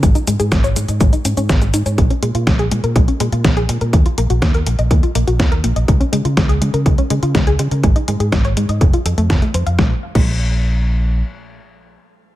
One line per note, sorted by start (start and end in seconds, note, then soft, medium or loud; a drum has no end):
0.03 0.13 G#1 medium
0.03 0.11 G#3 medium
0.03 kick loud
0.03 closed hi-hat medium
0.03 cabasa soft
0.15 0.23 D#4 medium
0.15 closed hi-hat soft
0.15 cabasa soft
0.27 0.38 G#2 medium
0.27 0.32 G#3 loud
0.27 closed hi-hat medium
0.27 cabasa medium
0.40 0.50 G#2 medium
0.40 0.47 G#4 medium
0.40 closed hi-hat soft
0.40 cabasa soft
0.52 0.72 G#1 loud
0.52 0.56 G#3 medium
0.52 kick loud
0.52 snare loud
0.52 closed hi-hat medium
0.52 cabasa soft
0.64 0.72 C#5 loud
0.64 closed hi-hat soft
0.64 cabasa soft
0.76 0.87 G#2 medium
0.76 0.84 G#3 medium
0.76 closed hi-hat medium
0.76 cabasa medium
0.88 0.99 G#2 medium
0.88 1.00 D#5 medium
0.88 closed hi-hat soft
0.88 cabasa soft
1.01 1.11 G#1 loud
1.01 1.08 G#3 medium
1.01 kick loud
1.01 closed hi-hat medium
1.01 cabasa soft
1.13 1.21 D#4 medium
1.13 closed hi-hat soft
1.13 cabasa soft
1.25 1.35 G#2 medium
1.25 1.33 C#4 medium
1.25 closed hi-hat medium
1.25 cabasa medium
1.37 1.47 G#2 medium
1.37 1.45 C#4 loud
1.37 closed hi-hat soft
1.37 cabasa soft
1.49 1.70 G#1 medium
1.49 1.61 G#4 medium
1.49 kick loud
1.49 snare loud
1.49 closed hi-hat medium
1.49 cabasa soft
1.62 1.73 G#3 medium
1.62 closed hi-hat soft
1.62 cabasa soft
1.74 1.84 G#2 medium
1.74 1.82 D#4 medium
1.74 closed hi-hat medium
1.74 cabasa medium
1.86 1.96 G#2 medium
1.86 1.94 C#5 medium
1.86 closed hi-hat soft
1.86 cabasa soft
1.98 2.08 A#1 medium
1.98 2.06 G#3 medium
1.98 kick loud
1.98 closed hi-hat medium
2.10 2.18 C#4 medium
2.10 closed hi-hat soft
2.22 2.33 A#2 medium
2.22 2.27 G#3 loud
2.22 closed hi-hat medium
2.35 2.45 A#2 medium
2.35 2.43 F4 medium
2.35 closed hi-hat soft
2.47 2.68 A#1 loud
2.47 2.52 G#3 medium
2.47 kick loud
2.47 snare loud
2.47 closed hi-hat medium
2.59 2.67 G#4 loud
2.59 closed hi-hat soft
2.71 2.82 A#2 medium
2.71 2.79 G#3 medium
2.71 closed hi-hat medium
2.84 2.94 A#2 medium
2.84 2.95 A#4 medium
2.84 closed hi-hat soft
2.96 3.06 A#1 loud
2.96 3.04 G#3 medium
2.96 kick loud
2.96 closed hi-hat medium
3.08 3.16 C#4 medium
3.08 closed hi-hat soft
3.20 3.30 A#2 medium
3.20 3.25 G#3 loud
3.20 closed hi-hat medium
3.32 3.43 A#2 medium
3.32 3.40 F4 medium
3.32 closed hi-hat soft
3.44 3.65 A#1 medium
3.44 3.49 G#3 medium
3.44 kick loud
3.44 snare loud
3.44 closed hi-hat medium
3.57 3.65 G#4 loud
3.57 closed hi-hat soft
3.69 3.79 A#2 medium
3.69 3.77 G#3 medium
3.69 closed hi-hat medium
3.81 3.91 A#2 medium
3.81 3.93 A#4 medium
3.81 closed hi-hat soft
3.93 4.04 D#2 medium
3.93 4.01 A#3 medium
3.93 kick loud
3.93 closed hi-hat medium
4.06 4.13 F4 medium
4.06 closed hi-hat soft
4.18 4.28 A#1 medium
4.18 4.22 A#3 medium
4.18 closed hi-hat medium
4.30 4.40 A#1 medium
4.30 4.38 F#4 medium
4.30 closed hi-hat soft
4.42 4.63 D#2 loud
4.42 4.47 A#3 medium
4.42 kick loud
4.42 snare loud
4.42 closed hi-hat medium
4.54 4.62 A#4 loud
4.54 closed hi-hat soft
4.66 4.77 A#1 medium
4.66 4.74 A#3 medium
4.66 closed hi-hat medium
4.79 4.89 A#1 medium
4.79 4.90 D#5 medium
4.79 closed hi-hat soft
4.91 5.01 D#2 loud
4.91 4.99 A#3 medium
4.91 kick loud
4.91 closed hi-hat medium
5.03 5.11 F4 medium
5.03 closed hi-hat soft
5.15 5.26 A#1 medium
5.15 5.20 A#3 loud
5.15 closed hi-hat medium
5.27 5.38 A#1 medium
5.27 5.35 F#4 medium
5.27 closed hi-hat soft
5.40 5.60 D#2 medium
5.40 5.44 A#3 medium
5.40 kick loud
5.40 snare loud
5.40 closed hi-hat medium
5.52 5.60 A#4 loud
5.52 closed hi-hat soft
5.64 5.74 A#1 medium
5.64 5.72 A#3 medium
5.64 closed hi-hat medium
5.76 5.86 A#1 medium
5.76 5.88 D#5 medium
5.76 closed hi-hat soft
5.88 5.99 C#2 medium
5.88 5.96 G#3 medium
5.88 kick loud
5.88 closed hi-hat medium
6.00 6.08 C#4 medium
6.00 closed hi-hat soft
6.12 6.23 C#3 medium
6.12 6.17 G#3 loud
6.12 closed hi-hat medium
6.25 6.35 C#3 medium
6.25 6.33 F4 medium
6.25 closed hi-hat soft
6.37 6.58 C#2 medium
6.37 6.42 G#3 medium
6.37 kick loud
6.37 snare loud
6.37 closed hi-hat medium
6.49 6.57 G#4 loud
6.49 closed hi-hat soft
6.61 6.72 C#3 medium
6.61 6.69 G#3 medium
6.61 closed hi-hat medium
6.74 6.84 C#3 medium
6.74 6.85 A#4 medium
6.74 closed hi-hat soft
6.86 6.96 C#2 loud
6.86 6.94 G#3 medium
6.86 kick loud
6.86 closed hi-hat medium
6.98 7.06 C#4 medium
6.98 closed hi-hat soft
7.10 7.21 C#3 medium
7.10 7.15 G#3 loud
7.10 closed hi-hat medium
7.22 7.33 C#3 medium
7.22 7.30 F4 medium
7.22 closed hi-hat soft
7.35 7.55 C#2 medium
7.35 7.40 G#3 medium
7.35 kick loud
7.35 snare loud
7.35 closed hi-hat medium
7.47 7.55 G#4 loud
7.47 closed hi-hat soft
7.59 7.69 C#3 medium
7.59 7.67 G#3 medium
7.59 closed hi-hat medium
7.71 7.82 C#3 medium
7.71 7.83 A#4 medium
7.71 closed hi-hat soft
7.83 7.94 G#1 medium
7.83 7.91 G#3 medium
7.83 kick loud
7.83 closed hi-hat medium
7.96 8.04 D#4 medium
7.96 closed hi-hat soft
8.08 8.18 G#2 medium
8.08 8.13 G#3 medium
8.08 closed hi-hat medium
8.20 8.30 G#2 medium
8.20 8.28 G#4 medium
8.20 closed hi-hat soft
8.32 8.53 G#1 loud
8.32 8.37 G#3 medium
8.32 kick loud
8.32 snare loud
8.32 closed hi-hat medium
8.45 8.52 C#5 loud
8.45 closed hi-hat soft
8.57 8.67 G#2 medium
8.57 8.65 G#3 medium
8.57 closed hi-hat medium
8.69 8.79 G#2 medium
8.69 8.81 D#5 medium
8.69 closed hi-hat soft
8.81 8.91 F1 loud
8.81 8.89 A3 medium
8.81 kick loud
8.81 closed hi-hat medium
8.93 9.01 F4 medium
8.93 closed hi-hat soft
9.05 9.16 F2 medium
9.05 9.13 A4 medium
9.05 closed hi-hat medium
9.17 9.28 F2 medium
9.17 9.26 A3 loud
9.17 closed hi-hat soft
9.30 9.40 F1 medium
9.30 9.41 A5 medium
9.30 kick loud
9.30 snare loud
9.30 closed hi-hat medium
9.42 9.50 A3 medium
9.42 closed hi-hat soft
9.54 9.65 F2 medium
9.54 9.66 C5 medium
9.54 closed hi-hat medium
9.66 9.77 F2 medium
9.66 9.74 F5 medium
9.66 closed hi-hat soft
9.79 9.92 A#1 medium
9.79 9.92 G#3 medium
9.79 kick loud
9.79 snare medium
10.15 11.21 A#1 medium
10.15 10.29 G#3 medium
10.15 kick loud
10.15 crash medium